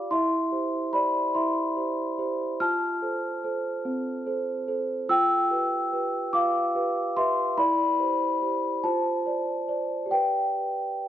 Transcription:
Already playing: F4 G4 D5 F5 D6
0.11 E4 E5 C6
0.52 G4 C5
0.93 G4 C5 D5 B5
1.35 E4 E5 C6
1.77 G4 C5
2.19 G4 C5
2.60 F4 A5 F6
3.02 A4 C5
3.44 A4 C5
3.85 C4
4.26 A4 C5
4.68 A4 C5
5.09 F4 G5 E6
5.51 G4 B4
5.92 G4 B4
6.33 F4 F5 D6
6.75 G4 B4
7.17 G4 B4 E5 C6
7.58 E4 D5 B5
8.00 G4 C5
8.42 G4 C5
8.84 F4 C5 A5
9.26 C5 D5
9.68 C5 D5
10.06 G4 D5
10.11 B4 G5

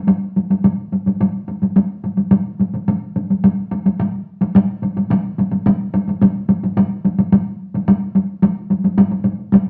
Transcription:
0.07 taiko high
0.36 taiko high
0.50 taiko high
0.64 taiko high
0.92 taiko high
1.06 taiko high
1.21 taiko high
1.48 taiko high
1.62 taiko high
1.76 taiko high
2.04 taiko high
2.18 taiko high
2.31 taiko high
2.59 taiko high
2.74 taiko high
2.88 taiko high
3.16 taiko high
3.30 taiko high
3.44 taiko high
3.72 taiko high
3.86 taiko high
3.99 taiko high
4.41 taiko high
4.55 taiko high
4.82 taiko high
4.97 taiko high
5.10 taiko high
5.38 taiko high
5.52 taiko high
5.66 taiko high
5.94 taiko high
6.08 taiko high
6.22 taiko high
6.49 taiko high
6.63 taiko high
6.77 taiko high
7.05 taiko high
7.18 taiko high
7.32 taiko high
7.74 taiko high
7.88 taiko high
8.15 taiko high
8.42 taiko high
8.70 taiko high
8.84 taiko high
8.98 taiko high
9.11 taiko high
9.25 taiko high
9.39 taiko high
9.52 taiko high
9.66 taiko high

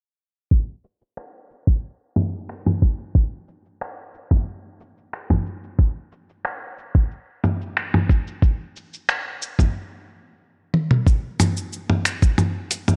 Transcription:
0.51 kick
0.84 shaker
1.01 shaker
1.17 finger snap
1.50 shaker
1.67 kick, shaker
1.83 shaker
2.16 mid tom, shaker
2.34 shaker
2.49 finger snap
2.66 mid tom
2.82 kick, shaker
2.99 shaker
3.15 kick, shaker
3.48 shaker
3.66 shaker
3.82 finger snap
4.15 shaker
4.31 kick, mid tom, shaker
4.47 shaker
4.80 shaker
4.97 shaker
5.13 finger snap, shaker
5.30 kick, mid tom
5.46 shaker
5.64 shaker
5.79 kick, shaker
6.12 shaker
6.29 shaker
6.45 finger snap, shaker
6.78 shaker
6.95 kick, shaker
7.11 shaker
7.44 mid tom, shaker
7.61 shaker
7.77 finger snap, shaker
7.94 mid tom
8.10 kick, shaker
8.27 shaker
8.42 kick, shaker
8.76 shaker
8.93 shaker
9.09 finger snap, shaker
9.42 shaker
9.59 kick, mid tom, shaker
10.74 high tom
10.91 mid tom
11.06 kick, shaker
11.40 closed hi-hat, mid tom, shaker
11.57 shaker
11.73 shaker
11.90 mid tom
12.05 finger snap, closed hi-hat, shaker
12.22 kick, shaker
12.38 mid tom, shaker
12.71 closed hi-hat, shaker
12.88 mid tom, shaker

